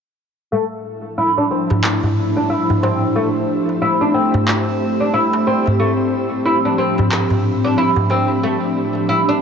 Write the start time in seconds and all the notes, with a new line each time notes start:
0.52 A2 A3
0.72 D4 E4
0.89 F3
1.18 E4
1.38 D4
1.51 C4
1.65 G4
1.70 C5, darbuka ka, darbuka dum
1.84 clap, darbuka tek
2.03 darbuka ka, darbuka dum
2.36 D4
2.50 E4
2.70 darbuka dum
2.83 C4, darbuka tek
3.16 A3
3.42 C4
3.69 darbuka ka
3.82 E4
4.01 D4
4.14 C4
4.34 darbuka ka, darbuka dum
4.48 clap
5.00 D4
5.14 E4
5.33 darbuka tek
5.47 C4
5.66 darbuka ka, darbuka dum
5.79 A2 A3
6.15 F3
6.45 D4 E4
6.65 D4
6.78 C4
6.98 darbuka ka, darbuka dum
7.11 clap, darbuka tek
7.30 darbuka ka, darbuka dum
7.64 D4
7.78 E4
7.96 darbuka dum
8.10 C4, darbuka tek
8.43 A3
8.50 E3
8.79 B4
8.95 darbuka ka
9.09 E4
9.29 D4